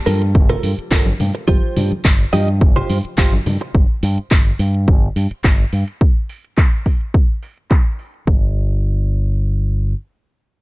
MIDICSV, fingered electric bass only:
0, 0, Header, 1, 3, 480
1, 0, Start_track
1, 0, Tempo, 566038
1, 1255, Time_signature, 4, 2, 24, 8
1, 9004, End_track
2, 0, Start_track
2, 0, Title_t, "Fingered electric bass"
2, 0, Program_c, 0, 33
2, 57, Note_on_c, 0, 43, 90
2, 298, Note_on_c, 0, 31, 97
2, 311, Note_off_c, 0, 43, 0
2, 462, Note_off_c, 0, 31, 0
2, 537, Note_on_c, 0, 43, 75
2, 621, Note_off_c, 0, 43, 0
2, 776, Note_on_c, 0, 31, 99
2, 941, Note_off_c, 0, 31, 0
2, 1017, Note_on_c, 0, 43, 94
2, 1101, Note_off_c, 0, 43, 0
2, 1256, Note_on_c, 0, 31, 93
2, 1341, Note_off_c, 0, 31, 0
2, 1497, Note_on_c, 0, 43, 101
2, 1618, Note_off_c, 0, 43, 0
2, 1737, Note_on_c, 0, 31, 73
2, 1902, Note_off_c, 0, 31, 0
2, 1976, Note_on_c, 0, 43, 90
2, 2217, Note_on_c, 0, 31, 91
2, 2229, Note_off_c, 0, 43, 0
2, 2382, Note_off_c, 0, 31, 0
2, 2456, Note_on_c, 0, 43, 76
2, 2541, Note_off_c, 0, 43, 0
2, 2697, Note_on_c, 0, 31, 98
2, 2862, Note_off_c, 0, 31, 0
2, 2935, Note_on_c, 0, 43, 92
2, 3020, Note_off_c, 0, 43, 0
2, 3177, Note_on_c, 0, 31, 96
2, 3261, Note_off_c, 0, 31, 0
2, 3416, Note_on_c, 0, 43, 99
2, 3537, Note_off_c, 0, 43, 0
2, 3656, Note_on_c, 0, 31, 68
2, 3822, Note_off_c, 0, 31, 0
2, 3895, Note_on_c, 0, 43, 90
2, 4137, Note_on_c, 0, 31, 91
2, 4150, Note_off_c, 0, 43, 0
2, 4302, Note_off_c, 0, 31, 0
2, 4376, Note_on_c, 0, 43, 74
2, 4461, Note_off_c, 0, 43, 0
2, 4617, Note_on_c, 0, 31, 93
2, 4782, Note_off_c, 0, 31, 0
2, 4857, Note_on_c, 0, 43, 91
2, 4941, Note_off_c, 0, 43, 0
2, 7017, Note_on_c, 0, 31, 84
2, 8422, Note_off_c, 0, 31, 0
2, 9004, End_track
3, 0, Start_track
3, 0, Title_t, "Muted fingered electric bass strokes"
3, 664, Note_on_c, 9, 29, 43
3, 749, Note_off_c, 9, 29, 0
3, 1623, Note_on_c, 9, 29, 37
3, 1708, Note_off_c, 9, 29, 0
3, 2582, Note_on_c, 9, 29, 43
3, 2667, Note_off_c, 9, 29, 0
3, 3542, Note_on_c, 9, 29, 36
3, 3627, Note_off_c, 9, 29, 0
3, 4503, Note_on_c, 9, 29, 42
3, 4588, Note_off_c, 9, 29, 0
3, 9004, End_track
0, 0, End_of_file